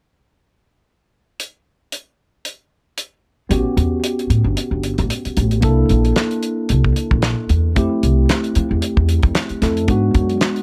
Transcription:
1.40 closed hi-hat soft
1.92 closed hi-hat soft
2.45 closed hi-hat soft
2.98 closed hi-hat soft
3.49 3.63 A1 medium
3.49 5.59 B3 medium
3.49 5.59 C#4 soft
3.49 5.60 F#4 soft
3.49 5.60 G4 medium
3.49 closed hi-hat medium
3.77 3.98 E2 medium
3.77 closed hi-hat soft
4.04 closed hi-hat medium
4.19 closed hi-hat soft
4.30 4.42 A2 medium
4.30 closed hi-hat medium
4.44 4.54 G1 medium
4.57 closed hi-hat medium
4.71 4.93 G1 medium
4.83 closed hi-hat medium
4.98 5.08 A1 medium
4.98 closed hi-hat soft
5.10 closed hi-hat medium
5.25 muted upright bass stroke soft
5.25 closed hi-hat soft
5.37 5.63 A1 medium
5.37 closed hi-hat soft
5.51 closed hi-hat soft
5.61 5.84 C2 medium
5.61 7.71 A#3 medium
5.61 7.71 D4 soft
5.61 7.72 E4 medium
5.61 7.72 A4 medium
5.61 kick medium
5.61 closed hi-hat medium
5.89 6.11 A#1 medium
5.89 closed hi-hat soft
6.05 closed hi-hat soft
6.16 snare medium
6.16 closed hi-hat medium
6.31 closed hi-hat soft
6.43 closed hi-hat soft
6.69 6.91 C2 medium
6.69 closed hi-hat medium
6.84 kick medium
6.96 closed hi-hat soft
7.11 7.32 A#1 medium
7.11 kick medium
7.22 snare medium
7.22 closed hi-hat medium
7.49 7.76 E2 medium
7.49 closed hi-hat soft
7.75 7.88 F2 medium
7.75 9.58 A3 medium
7.75 9.59 C4 medium
7.75 9.59 E4 medium
7.75 9.60 G4 medium
7.75 kick medium
7.75 closed hi-hat medium
8.03 8.24 C2 medium
8.03 closed hi-hat soft
8.29 snare medium
8.29 closed hi-hat medium
8.44 closed hi-hat soft
8.55 8.68 F3 medium
8.55 closed hi-hat medium
8.71 8.80 E2 medium
8.82 closed hi-hat medium
8.97 9.18 E2 medium
8.97 kick medium
9.09 closed hi-hat medium
9.23 9.33 F2 medium
9.23 kick medium
9.23 closed hi-hat soft
9.35 snare medium
9.35 closed hi-hat medium
9.49 muted upright bass stroke soft
9.49 closed hi-hat soft
9.61 9.88 F2 medium
9.61 9.88 A3 soft
9.61 9.89 C4 soft
9.61 9.89 E4 soft
9.61 9.89 A4 soft
9.61 snare soft
9.61 closed hi-hat medium
9.77 closed hi-hat soft
9.88 10.10 G#2 medium
9.88 10.63 G#3 medium
9.88 10.63 B3 medium
9.88 10.63 D4 medium
9.88 10.63 F#4 medium
9.88 kick medium
9.88 closed hi-hat medium
10.14 10.36 F#2 medium
10.14 kick medium
10.14 closed hi-hat soft
10.29 closed hi-hat soft
10.41 snare medium
10.41 closed hi-hat medium
10.56 closed hi-hat soft

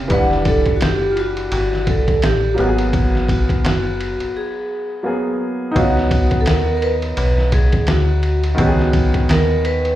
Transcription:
0.00 0.11 C3 soft
0.00 0.10 C#3 medium
0.00 0.11 A#3 soft
0.00 0.12 G4 medium
0.08 0.64 E1 loud
0.08 2.53 E3 medium
0.08 2.53 G3 medium
0.08 0.27 B4 loud
0.08 kick loud
0.08 ride medium
0.12 2.55 D4 medium
0.12 2.55 F#5 medium
0.31 snare soft
0.45 0.77 A4 medium
0.45 kick loud
0.45 ride medium
0.66 0.72 F#1 medium
0.66 kick medium
0.66 ride soft
0.76 0.82 F#4 medium
0.81 1.49 F#1 loud
0.81 1.13 G4 medium
0.81 snare loud
0.81 hi-hat pedal medium
0.81 ride medium
1.11 1.17 F4 medium
1.17 1.53 F#4 medium
1.17 ride medium
1.37 ride soft
1.52 2.05 G1 loud
1.52 1.90 F#4 medium
1.52 ride medium
1.73 snare soft
1.87 2.25 A4 medium
1.87 kick medium
1.87 ride medium
2.08 2.14 A1 soft
2.08 kick medium
2.08 ride soft
2.22 2.57 A1 medium
2.22 2.60 G4 medium
2.22 snare loud
2.22 hi-hat pedal soft
2.22 ride medium
2.54 4.99 F#3 medium
2.54 5.00 A#3 medium
2.54 5.01 B3 medium
2.54 ride soft
2.59 3.46 G#1 loud
2.59 2.67 F#4 medium
2.59 3.26 F#4 medium
2.67 5.05 G#4 medium
2.78 ride medium
2.93 kick loud
2.93 ride medium
3.15 snare soft
3.28 3.47 F#4 medium
3.28 kick medium
3.28 ride medium
3.49 3.55 F#1 soft
3.49 kick medium
3.49 ride soft
3.64 4.17 F#1 loud
3.64 4.38 F#4 medium
3.64 snare loud
3.64 hi-hat pedal medium
3.64 ride medium
4.00 ride medium
4.20 4.26 G#1 soft
4.20 ride soft
4.37 5.38 G#4 medium
5.03 5.75 F#3 soft
5.03 5.75 A#3 soft
5.03 5.72 B3 soft
5.03 5.76 G#4 medium
5.71 8.53 B3 medium
5.71 8.52 D#4 medium
5.76 6.48 C#2 loud
5.76 8.54 C#4 medium
5.76 5.84 F4 medium
5.76 6.43 F#4 medium
5.76 kick loud
5.76 ride medium
5.84 8.58 F#4 medium
5.97 snare soft
6.11 kick medium
6.11 ride medium
6.31 kick medium
6.31 ride soft
6.41 6.46 A4 medium
6.46 7.14 D#2 loud
6.46 6.75 A#4 medium
6.46 snare loud
6.46 hi-hat pedal medium
6.46 ride medium
6.77 6.82 A#4 medium
6.82 7.49 B4 medium
6.82 ride medium
7.02 ride soft
7.17 7.84 B1 medium
7.17 ride medium
7.38 snare soft
7.52 7.89 G#4 medium
7.52 kick medium
7.52 ride medium
7.72 kick loud
7.72 ride soft
7.87 8.55 D2 loud
7.87 8.40 F#4 medium
7.87 snare loud
7.87 hi-hat pedal soft
7.87 ride medium
8.23 ride medium
8.44 ride soft
8.55 9.25 C#2 loud
8.55 9.95 D#3 medium
8.55 9.95 B3 medium
8.55 9.95 C#4 medium
8.55 kick loud
8.55 ride medium
8.60 9.32 F#4 medium
8.60 8.67 G4 medium
8.67 9.95 G#4 medium
8.79 snare soft
8.93 kick medium
8.93 ride medium
9.14 kick medium
9.14 ride soft
9.29 9.95 D#2 loud
9.29 9.66 A#4 medium
9.29 snare loud
9.29 hi-hat pedal medium
9.29 ride medium
9.65 9.95 B4 loud
9.65 ride medium
9.85 ride soft

